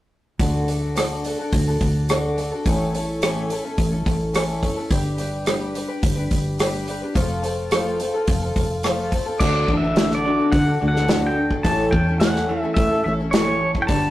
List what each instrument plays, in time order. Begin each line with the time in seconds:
0.39 fingered electric bass D2, twelve-string acoustic guitar D3 A3 D4 F#4 A4, kick, open hi-hat
0.68 twelve-string acoustic guitar A3 D4 F#4 A4, open hi-hat
0.95 twelve-string acoustic guitar D3 A3 D4 F#4 A4, cross-stick, open hi-hat
1.25 twelve-string acoustic guitar A3 D4 F#4 A4, open hi-hat
1.38 twelve-string acoustic guitar D4 F#4 A4
1.53 fingered electric bass D2, kick, open hi-hat
1.67 twelve-string acoustic guitar D4 F#4 A4
1.81 fingered electric bass D2, kick, open hi-hat
2.09 twelve-string acoustic guitar D3 A3 D4 F#4 A4, cross-stick, open hi-hat
2.37 twelve-string acoustic guitar A3 D4 F#4 A4, open hi-hat
2.51 twelve-string acoustic guitar D4 F#4 A4
2.66 fingered electric bass A1, twelve-string acoustic guitar A2 E3 A3 C#4 E4 A4, kick, open hi-hat
2.94 twelve-string acoustic guitar A3 C#4 E4 A4, open hi-hat
3.22 twelve-string acoustic guitar A2 E3 A3 C#4 E4 A4, cross-stick, open hi-hat
3.50 twelve-string acoustic guitar A3 C#4 E4 A4, open hi-hat
3.63 twelve-string acoustic guitar A3 C#4 E4 A4
3.78 fingered electric bass A1, kick, open hi-hat
3.92 twelve-string acoustic guitar A3 C#4 E4 A4
4.06 fingered electric bass A1, kick, open hi-hat
4.34 twelve-string acoustic guitar A2 E3 A3 C#4 E4 A4, cross-stick, open hi-hat
4.63 twelve-string acoustic guitar A3 C#4 E4 A4, kick, open hi-hat
4.76 twelve-string acoustic guitar A3 C#4 E4 A4
4.91 fingered electric bass G1, twelve-string acoustic guitar G3 D4 G4 B4, kick, open hi-hat
5.18 twelve-string acoustic guitar G3 D4 G4 B4, open hi-hat
5.46 twelve-string acoustic guitar G3 D4 G4 B4, cross-stick, open hi-hat
5.75 twelve-string acoustic guitar G3 D4 G4 B4, open hi-hat
5.88 twelve-string acoustic guitar D4 G4 B4
6.03 fingered electric bass G1, kick, open hi-hat
6.16 twelve-string acoustic guitar D4 G4 B4
6.31 fingered electric bass G1, kick, open hi-hat
6.59 twelve-string acoustic guitar G3 D4 G4 B4, cross-stick, open hi-hat
6.87 twelve-string acoustic guitar G3 D4 G4 B4, open hi-hat
7.02 twelve-string acoustic guitar D4 G4 B4
7.15 fingered electric bass F1, twelve-string acoustic guitar F3 A3 C4 F4 A4, kick, open hi-hat
7.42 twelve-string acoustic guitar A3 C4 F4 A4, open hi-hat
7.71 twelve-string acoustic guitar F3 A3 C4 F4 A4, cross-stick, open hi-hat
8.00 twelve-string acoustic guitar A3 C4 F4 A4, open hi-hat
8.14 twelve-string acoustic guitar C4 F4 A4
8.27 fingered electric bass F1, kick, open hi-hat
8.42 twelve-string acoustic guitar C4 F4 A4
8.56 fingered electric bass F1, kick, open hi-hat
8.83 twelve-string acoustic guitar F3 A3 C4 F4 A4, cross-stick, open hi-hat
9.11 twelve-string acoustic guitar A3 C4 F4 A4, kick, open hi-hat
9.26 twelve-string acoustic guitar C4 F4 A4
9.40 fingered electric bass D2, twelve-string acoustic guitar D3 A3 D4 F#4 A4, pedal steel guitar D5, kick, crash
9.68 fingered electric bass A1, clean electric guitar D3, twelve-string acoustic guitar A3 D4 F#4, kick
9.72 twelve-string acoustic guitar A4
9.77 pedal steel guitar E5
9.84 twelve-string acoustic guitar D4 F#4 A4
9.96 twelve-string acoustic guitar D3 A3 D4 F#4 A4, snare, open hi-hat
10.11 pedal steel guitar D5, snare
10.24 clean electric guitar D3, twelve-string acoustic guitar A3 D4 F#4 A4
10.39 twelve-string acoustic guitar D4 F#4 A4
10.52 fingered electric bass D3, clean electric guitar D3 D4, pedal steel guitar F#5, kick, open hi-hat
10.66 twelve-string acoustic guitar D4 F#4 A4
10.79 fingered electric bass D2, clean electric guitar D3, twelve-string acoustic guitar A3 D4 F#4 A4
10.88 pedal steel guitar F#5
10.94 twelve-string acoustic guitar D4 F#4 A4, snare
11.07 twelve-string acoustic guitar D3 A3 D4 F#4 A4, snare, open hi-hat
11.27 pedal steel guitar G5
11.37 clean electric guitar D3 D4
11.50 twelve-string acoustic guitar D4 F#4 A4, kick
11.63 fingered electric bass A1, twelve-string acoustic guitar A2 E3 A3 C#4 E4 A4, pedal steel guitar A5, kick, open hi-hat
11.91 fingered electric bass E2, clean electric guitar A2, twelve-string acoustic guitar C#4 E4, pedal steel guitar G5, kick
11.95 twelve-string acoustic guitar A4
12.07 twelve-string acoustic guitar A3 C#4 E4 A4
12.20 twelve-string acoustic guitar A2 E3 A3 C#4 E4 A4, pedal steel guitar F#5, snare, open hi-hat
12.36 snare
12.48 clean electric guitar A2 E3, twelve-string acoustic guitar A3 C#4 E4 A4
12.61 twelve-string acoustic guitar C#4 E4 A4, pedal steel guitar E5
12.65 twelve-string acoustic guitar A3
12.74 fingered electric bass A2, clean electric guitar E3, pedal steel guitar E5, kick, open hi-hat
12.91 twelve-string acoustic guitar A3 C#4 E4 A4
13.04 fingered electric bass A1, clean electric guitar A2 E3, twelve-string acoustic guitar A3 C#4 E4, pedal steel guitar E5
13.09 twelve-string acoustic guitar A4
13.20 twelve-string acoustic guitar A3 C#4 E4 A4
13.31 twelve-string acoustic guitar A2 E3 A3 C#4 E4, pedal steel guitar C#5, snare, open hi-hat
13.36 twelve-string acoustic guitar A4
13.60 clean electric guitar A2 E3
13.75 twelve-string acoustic guitar A3 C#4 E4 A4, kick
13.82 pedal steel guitar G5
13.87 fingered electric bass G1, twelve-string acoustic guitar G3 D4 G4 B4, clean electric guitar B3, pedal steel guitar A5, kick, open hi-hat